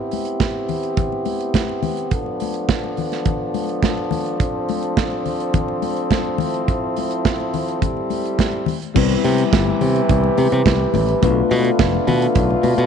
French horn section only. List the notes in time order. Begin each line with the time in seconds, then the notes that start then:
Already playing: B3 C4 E4 G4
2.13 F3 D4 A4
4.40 C4
6.41 E4
7.83 G3 E4
8.95 C3 E3 G4 B4
11.23 D3 A3 F4